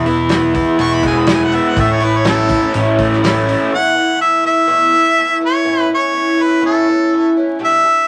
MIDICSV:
0, 0, Header, 1, 6, 480
1, 0, Start_track
1, 0, Key_signature, 4, "major"
1, 0, Tempo, 486224
1, 1747, Time_signature, 4, 2, 24, 8
1, 7973, End_track
2, 0, Start_track
2, 0, Title_t, "Harmonica"
2, 0, Program_c, 0, 22
2, 795, Note_on_c, 0, 85, 106
2, 927, Note_on_c, 0, 83, 87
2, 942, Note_off_c, 0, 85, 0
2, 1030, Note_off_c, 0, 83, 0
2, 1052, Note_on_c, 0, 80, 90
2, 1171, Note_on_c, 0, 83, 75
2, 1185, Note_off_c, 0, 80, 0
2, 1272, Note_off_c, 0, 83, 0
2, 1297, Note_on_c, 0, 80, 85
2, 1421, Note_on_c, 0, 78, 86
2, 1435, Note_off_c, 0, 80, 0
2, 1527, Note_on_c, 0, 76, 81
2, 1541, Note_off_c, 0, 78, 0
2, 1664, Note_on_c, 0, 78, 91
2, 1679, Note_off_c, 0, 76, 0
2, 1759, Note_off_c, 0, 78, 0
2, 1778, Note_on_c, 0, 76, 88
2, 1908, Note_on_c, 0, 73, 97
2, 1923, Note_off_c, 0, 76, 0
2, 2019, Note_on_c, 0, 71, 81
2, 2034, Note_off_c, 0, 73, 0
2, 2138, Note_on_c, 0, 73, 86
2, 2153, Note_off_c, 0, 71, 0
2, 2235, Note_off_c, 0, 73, 0
2, 2257, Note_on_c, 0, 69, 105
2, 2708, Note_off_c, 0, 69, 0
2, 3702, Note_on_c, 0, 78, 107
2, 4132, Note_off_c, 0, 78, 0
2, 4157, Note_on_c, 0, 76, 97
2, 4375, Note_off_c, 0, 76, 0
2, 4405, Note_on_c, 0, 76, 115
2, 5316, Note_off_c, 0, 76, 0
2, 5390, Note_on_c, 0, 73, 81
2, 5816, Note_off_c, 0, 73, 0
2, 5872, Note_on_c, 0, 73, 93
2, 6343, Note_on_c, 0, 71, 103
2, 6357, Note_off_c, 0, 73, 0
2, 6564, Note_off_c, 0, 71, 0
2, 6576, Note_on_c, 0, 69, 85
2, 7242, Note_off_c, 0, 69, 0
2, 7548, Note_on_c, 0, 76, 114
2, 7973, Note_off_c, 0, 76, 0
2, 7973, End_track
3, 0, Start_track
3, 0, Title_t, "Twelve-string acoustic guitar"
3, 0, Program_c, 1, 25
3, 67, Note_on_c, 1, 64, 62
3, 70, Note_on_c, 1, 59, 58
3, 76, Note_on_c, 1, 56, 53
3, 78, Note_on_c, 1, 52, 50
3, 298, Note_off_c, 1, 52, 0
3, 308, Note_off_c, 1, 64, 0
3, 309, Note_off_c, 1, 59, 0
3, 310, Note_off_c, 1, 56, 0
3, 310, Note_on_c, 1, 52, 65
3, 322, Note_on_c, 1, 56, 70
3, 331, Note_on_c, 1, 59, 75
3, 338, Note_on_c, 1, 64, 75
3, 526, Note_off_c, 1, 64, 0
3, 538, Note_on_c, 1, 64, 61
3, 543, Note_off_c, 1, 59, 0
3, 548, Note_off_c, 1, 56, 0
3, 549, Note_off_c, 1, 52, 0
3, 555, Note_on_c, 1, 59, 65
3, 560, Note_on_c, 1, 56, 56
3, 568, Note_on_c, 1, 52, 58
3, 771, Note_off_c, 1, 56, 0
3, 779, Note_off_c, 1, 52, 0
3, 780, Note_off_c, 1, 59, 0
3, 780, Note_on_c, 1, 40, 88
3, 783, Note_off_c, 1, 64, 0
3, 783, Note_on_c, 1, 56, 96
3, 785, Note_on_c, 1, 47, 84
3, 791, Note_on_c, 1, 52, 88
3, 792, Note_on_c, 1, 59, 94
3, 802, Note_on_c, 1, 64, 84
3, 1013, Note_off_c, 1, 64, 0
3, 1024, Note_off_c, 1, 40, 0
3, 1024, Note_off_c, 1, 59, 0
3, 1025, Note_off_c, 1, 56, 0
3, 1025, Note_on_c, 1, 64, 57
3, 1026, Note_off_c, 1, 47, 0
3, 1027, Note_off_c, 1, 52, 0
3, 1036, Note_on_c, 1, 59, 47
3, 1039, Note_on_c, 1, 52, 45
3, 1040, Note_on_c, 1, 56, 49
3, 1258, Note_off_c, 1, 52, 0
3, 1264, Note_off_c, 1, 56, 0
3, 1266, Note_off_c, 1, 59, 0
3, 1266, Note_off_c, 1, 64, 0
3, 1270, Note_on_c, 1, 52, 71
3, 1276, Note_on_c, 1, 56, 57
3, 1278, Note_on_c, 1, 59, 68
3, 1289, Note_on_c, 1, 64, 66
3, 1509, Note_off_c, 1, 52, 0
3, 1512, Note_off_c, 1, 56, 0
3, 1513, Note_off_c, 1, 59, 0
3, 1513, Note_off_c, 1, 64, 0
3, 1532, Note_on_c, 1, 59, 53
3, 1539, Note_on_c, 1, 52, 43
3, 1540, Note_on_c, 1, 56, 47
3, 1743, Note_off_c, 1, 52, 0
3, 1751, Note_on_c, 1, 45, 80
3, 1753, Note_off_c, 1, 56, 0
3, 1755, Note_on_c, 1, 52, 84
3, 1757, Note_on_c, 1, 57, 84
3, 1760, Note_off_c, 1, 59, 0
3, 1765, Note_on_c, 1, 64, 75
3, 1767, Note_on_c, 1, 61, 82
3, 1988, Note_off_c, 1, 64, 0
3, 1989, Note_off_c, 1, 45, 0
3, 1991, Note_off_c, 1, 52, 0
3, 1992, Note_off_c, 1, 57, 0
3, 1997, Note_off_c, 1, 61, 0
3, 2000, Note_on_c, 1, 64, 53
3, 2011, Note_on_c, 1, 61, 49
3, 2012, Note_on_c, 1, 57, 46
3, 2233, Note_off_c, 1, 57, 0
3, 2234, Note_off_c, 1, 64, 0
3, 2239, Note_off_c, 1, 61, 0
3, 2242, Note_on_c, 1, 52, 62
3, 2245, Note_on_c, 1, 57, 59
3, 2254, Note_on_c, 1, 61, 68
3, 2264, Note_on_c, 1, 64, 70
3, 2475, Note_off_c, 1, 52, 0
3, 2476, Note_off_c, 1, 57, 0
3, 2481, Note_off_c, 1, 61, 0
3, 2482, Note_off_c, 1, 64, 0
3, 2494, Note_on_c, 1, 64, 55
3, 2504, Note_on_c, 1, 61, 57
3, 2508, Note_on_c, 1, 57, 46
3, 2714, Note_off_c, 1, 57, 0
3, 2719, Note_off_c, 1, 64, 0
3, 2725, Note_on_c, 1, 45, 79
3, 2726, Note_off_c, 1, 61, 0
3, 2726, Note_on_c, 1, 52, 75
3, 2726, Note_on_c, 1, 57, 87
3, 2730, Note_on_c, 1, 64, 101
3, 2737, Note_on_c, 1, 61, 85
3, 2946, Note_off_c, 1, 64, 0
3, 2954, Note_off_c, 1, 61, 0
3, 2956, Note_off_c, 1, 45, 0
3, 2956, Note_off_c, 1, 52, 0
3, 2956, Note_off_c, 1, 57, 0
3, 2958, Note_on_c, 1, 64, 58
3, 2966, Note_on_c, 1, 61, 55
3, 2979, Note_on_c, 1, 57, 56
3, 3183, Note_off_c, 1, 57, 0
3, 3187, Note_on_c, 1, 52, 68
3, 3192, Note_off_c, 1, 64, 0
3, 3195, Note_on_c, 1, 57, 80
3, 3197, Note_off_c, 1, 61, 0
3, 3210, Note_on_c, 1, 61, 72
3, 3212, Note_on_c, 1, 64, 76
3, 3417, Note_off_c, 1, 64, 0
3, 3424, Note_off_c, 1, 61, 0
3, 3427, Note_off_c, 1, 52, 0
3, 3429, Note_on_c, 1, 64, 62
3, 3431, Note_off_c, 1, 57, 0
3, 3436, Note_on_c, 1, 61, 62
3, 3455, Note_on_c, 1, 57, 56
3, 3664, Note_off_c, 1, 57, 0
3, 3664, Note_on_c, 1, 40, 74
3, 3668, Note_off_c, 1, 64, 0
3, 3671, Note_off_c, 1, 61, 0
3, 3671, Note_on_c, 1, 52, 76
3, 3673, Note_on_c, 1, 47, 74
3, 3676, Note_on_c, 1, 57, 74
3, 3679, Note_on_c, 1, 59, 72
3, 3680, Note_on_c, 1, 64, 86
3, 3889, Note_off_c, 1, 59, 0
3, 3889, Note_off_c, 1, 64, 0
3, 3894, Note_off_c, 1, 57, 0
3, 3901, Note_on_c, 1, 59, 52
3, 3901, Note_on_c, 1, 64, 57
3, 3904, Note_off_c, 1, 52, 0
3, 3905, Note_off_c, 1, 40, 0
3, 3906, Note_on_c, 1, 57, 49
3, 3910, Note_off_c, 1, 47, 0
3, 3916, Note_on_c, 1, 52, 40
3, 4098, Note_off_c, 1, 52, 0
3, 4110, Note_on_c, 1, 52, 63
3, 4115, Note_off_c, 1, 57, 0
3, 4122, Note_off_c, 1, 59, 0
3, 4127, Note_on_c, 1, 57, 65
3, 4129, Note_off_c, 1, 64, 0
3, 4134, Note_on_c, 1, 59, 65
3, 4141, Note_on_c, 1, 64, 72
3, 4368, Note_off_c, 1, 52, 0
3, 4368, Note_off_c, 1, 64, 0
3, 4371, Note_off_c, 1, 59, 0
3, 4377, Note_off_c, 1, 57, 0
3, 4379, Note_on_c, 1, 64, 59
3, 4383, Note_on_c, 1, 59, 59
3, 4389, Note_on_c, 1, 57, 55
3, 4395, Note_on_c, 1, 52, 45
3, 4605, Note_off_c, 1, 59, 0
3, 4606, Note_off_c, 1, 57, 0
3, 4609, Note_on_c, 1, 40, 94
3, 4610, Note_off_c, 1, 64, 0
3, 4612, Note_off_c, 1, 52, 0
3, 4616, Note_on_c, 1, 47, 74
3, 4617, Note_on_c, 1, 59, 89
3, 4618, Note_on_c, 1, 57, 85
3, 4622, Note_on_c, 1, 64, 94
3, 4624, Note_on_c, 1, 52, 87
3, 4858, Note_off_c, 1, 40, 0
3, 4858, Note_off_c, 1, 59, 0
3, 4858, Note_off_c, 1, 64, 0
3, 4861, Note_off_c, 1, 47, 0
3, 4862, Note_off_c, 1, 57, 0
3, 4865, Note_off_c, 1, 52, 0
3, 4870, Note_on_c, 1, 59, 54
3, 4870, Note_on_c, 1, 64, 55
3, 4881, Note_on_c, 1, 57, 52
3, 4886, Note_on_c, 1, 52, 50
3, 5085, Note_off_c, 1, 52, 0
3, 5097, Note_on_c, 1, 52, 75
3, 5104, Note_off_c, 1, 59, 0
3, 5105, Note_off_c, 1, 57, 0
3, 5108, Note_off_c, 1, 64, 0
3, 5116, Note_on_c, 1, 57, 82
3, 5116, Note_on_c, 1, 59, 81
3, 5128, Note_on_c, 1, 64, 75
3, 5326, Note_off_c, 1, 64, 0
3, 5329, Note_off_c, 1, 59, 0
3, 5338, Note_on_c, 1, 64, 63
3, 5341, Note_off_c, 1, 52, 0
3, 5341, Note_on_c, 1, 59, 55
3, 5342, Note_off_c, 1, 57, 0
3, 5354, Note_on_c, 1, 57, 49
3, 5357, Note_on_c, 1, 52, 49
3, 5563, Note_off_c, 1, 52, 0
3, 5567, Note_off_c, 1, 59, 0
3, 5574, Note_on_c, 1, 45, 80
3, 5575, Note_off_c, 1, 57, 0
3, 5575, Note_on_c, 1, 52, 77
3, 5579, Note_on_c, 1, 59, 78
3, 5582, Note_off_c, 1, 64, 0
3, 5585, Note_on_c, 1, 61, 81
3, 5593, Note_on_c, 1, 64, 88
3, 5810, Note_off_c, 1, 64, 0
3, 5816, Note_off_c, 1, 61, 0
3, 5820, Note_off_c, 1, 45, 0
3, 5821, Note_off_c, 1, 52, 0
3, 5822, Note_on_c, 1, 64, 56
3, 5823, Note_off_c, 1, 59, 0
3, 5828, Note_on_c, 1, 61, 50
3, 5844, Note_on_c, 1, 59, 46
3, 6040, Note_off_c, 1, 61, 0
3, 6041, Note_on_c, 1, 52, 66
3, 6046, Note_off_c, 1, 59, 0
3, 6052, Note_on_c, 1, 61, 72
3, 6053, Note_off_c, 1, 64, 0
3, 6057, Note_on_c, 1, 59, 62
3, 6065, Note_on_c, 1, 64, 64
3, 6279, Note_off_c, 1, 64, 0
3, 6288, Note_off_c, 1, 61, 0
3, 6291, Note_on_c, 1, 64, 64
3, 6293, Note_off_c, 1, 52, 0
3, 6295, Note_off_c, 1, 59, 0
3, 6300, Note_on_c, 1, 61, 54
3, 6307, Note_on_c, 1, 59, 44
3, 6517, Note_off_c, 1, 59, 0
3, 6522, Note_off_c, 1, 61, 0
3, 6523, Note_on_c, 1, 45, 80
3, 6528, Note_on_c, 1, 52, 91
3, 6529, Note_on_c, 1, 59, 90
3, 6531, Note_off_c, 1, 64, 0
3, 6534, Note_on_c, 1, 61, 92
3, 6542, Note_on_c, 1, 64, 100
3, 6771, Note_off_c, 1, 64, 0
3, 6775, Note_off_c, 1, 45, 0
3, 6777, Note_off_c, 1, 52, 0
3, 6777, Note_off_c, 1, 59, 0
3, 6780, Note_off_c, 1, 61, 0
3, 6783, Note_on_c, 1, 64, 60
3, 6798, Note_on_c, 1, 61, 60
3, 6799, Note_on_c, 1, 59, 53
3, 7024, Note_off_c, 1, 64, 0
3, 7030, Note_off_c, 1, 59, 0
3, 7031, Note_on_c, 1, 52, 68
3, 7032, Note_off_c, 1, 61, 0
3, 7041, Note_on_c, 1, 59, 66
3, 7046, Note_on_c, 1, 61, 73
3, 7047, Note_on_c, 1, 64, 76
3, 7260, Note_off_c, 1, 64, 0
3, 7266, Note_off_c, 1, 61, 0
3, 7269, Note_off_c, 1, 52, 0
3, 7272, Note_on_c, 1, 64, 70
3, 7274, Note_off_c, 1, 59, 0
3, 7277, Note_on_c, 1, 61, 56
3, 7292, Note_on_c, 1, 59, 51
3, 7487, Note_off_c, 1, 59, 0
3, 7491, Note_on_c, 1, 57, 88
3, 7496, Note_on_c, 1, 47, 74
3, 7497, Note_off_c, 1, 64, 0
3, 7497, Note_on_c, 1, 55, 83
3, 7501, Note_on_c, 1, 67, 87
3, 7502, Note_off_c, 1, 61, 0
3, 7506, Note_on_c, 1, 62, 85
3, 7724, Note_off_c, 1, 67, 0
3, 7735, Note_off_c, 1, 62, 0
3, 7736, Note_on_c, 1, 67, 51
3, 7739, Note_off_c, 1, 57, 0
3, 7741, Note_off_c, 1, 47, 0
3, 7742, Note_off_c, 1, 55, 0
3, 7747, Note_on_c, 1, 62, 52
3, 7754, Note_on_c, 1, 57, 44
3, 7964, Note_off_c, 1, 57, 0
3, 7970, Note_off_c, 1, 62, 0
3, 7973, Note_off_c, 1, 67, 0
3, 7973, End_track
4, 0, Start_track
4, 0, Title_t, "Overdriven electric guitar"
4, 0, Program_c, 2, 29
4, 0, Note_on_c, 2, 40, 77
4, 1023, Note_off_c, 2, 40, 0
4, 7973, End_track
5, 0, Start_track
5, 0, Title_t, "Fingered electric bass"
5, 0, Program_c, 3, 33
5, 0, Note_on_c, 3, 28, 96
5, 599, Note_off_c, 3, 28, 0
5, 782, Note_on_c, 3, 28, 88
5, 1562, Note_off_c, 3, 28, 0
5, 1742, Note_on_c, 3, 33, 95
5, 2522, Note_off_c, 3, 33, 0
5, 2713, Note_on_c, 3, 33, 94
5, 3488, Note_off_c, 3, 33, 0
5, 7973, End_track
6, 0, Start_track
6, 0, Title_t, "Drums"
6, 57, Note_on_c, 9, 46, 51
6, 155, Note_off_c, 9, 46, 0
6, 287, Note_on_c, 9, 46, 77
6, 297, Note_on_c, 9, 38, 105
6, 386, Note_off_c, 9, 46, 0
6, 396, Note_off_c, 9, 38, 0
6, 537, Note_on_c, 9, 46, 60
6, 540, Note_on_c, 9, 36, 83
6, 636, Note_off_c, 9, 46, 0
6, 639, Note_off_c, 9, 36, 0
6, 777, Note_on_c, 9, 46, 76
6, 876, Note_off_c, 9, 46, 0
6, 1014, Note_on_c, 9, 46, 52
6, 1021, Note_on_c, 9, 36, 76
6, 1113, Note_off_c, 9, 46, 0
6, 1119, Note_off_c, 9, 36, 0
6, 1248, Note_on_c, 9, 46, 91
6, 1258, Note_on_c, 9, 38, 118
6, 1347, Note_off_c, 9, 46, 0
6, 1357, Note_off_c, 9, 38, 0
6, 1498, Note_on_c, 9, 46, 58
6, 1597, Note_off_c, 9, 46, 0
6, 1743, Note_on_c, 9, 36, 113
6, 1743, Note_on_c, 9, 46, 76
6, 1842, Note_off_c, 9, 36, 0
6, 1842, Note_off_c, 9, 46, 0
6, 1975, Note_on_c, 9, 46, 52
6, 2074, Note_off_c, 9, 46, 0
6, 2215, Note_on_c, 9, 46, 77
6, 2225, Note_on_c, 9, 38, 109
6, 2314, Note_off_c, 9, 46, 0
6, 2324, Note_off_c, 9, 38, 0
6, 2455, Note_on_c, 9, 46, 60
6, 2465, Note_on_c, 9, 36, 88
6, 2554, Note_off_c, 9, 46, 0
6, 2564, Note_off_c, 9, 36, 0
6, 2704, Note_on_c, 9, 46, 76
6, 2803, Note_off_c, 9, 46, 0
6, 2946, Note_on_c, 9, 46, 55
6, 2948, Note_on_c, 9, 36, 82
6, 3045, Note_off_c, 9, 46, 0
6, 3047, Note_off_c, 9, 36, 0
6, 3087, Note_on_c, 9, 38, 30
6, 3186, Note_off_c, 9, 38, 0
6, 3196, Note_on_c, 9, 46, 80
6, 3206, Note_on_c, 9, 38, 125
6, 3295, Note_off_c, 9, 46, 0
6, 3305, Note_off_c, 9, 38, 0
6, 3443, Note_on_c, 9, 46, 55
6, 3541, Note_off_c, 9, 46, 0
6, 7973, End_track
0, 0, End_of_file